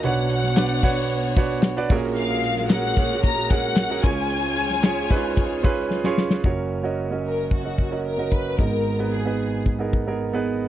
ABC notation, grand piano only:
X:1
M:4/4
L:1/16
Q:1/4=112
K:F#
V:1 name="Grand piano"
[=DFBc]3 z [DFB=d]2 [DFBc]3 z [DFBc]2 z [DFBd] [CFGA]2- | [CFGA]3 z [CFGA]2 [CFGc]3 z [CFGA]2 z [CFGA] [CEGc]2- | [CEGc]3 z [CEGc]2 [CDEGB]3 z [CEGB]2 z [CEGc]2 z | [CFAc]2 z [CFAd]2 [CFAd]3 z [CFAd]2 [CFAd]2 [CFAd]2 z |
[B,DGd]2 z [B,DGB]2 [B,DGB]3 z [B,DGA]2 [B,DGA]2 [B,DGB]2 z |]
V:2 name="Grand piano" clef=bass
[B,,,B,,]12- [B,,,B,,]2 [A,,,A,,]2- | [A,,,A,,]12- [A,,,A,,]2 [C,,C,]2- | [C,,C,]12- [C,,C,]2 z2 | [F,,,F,,]16 |
[G,,,G,,]16 |]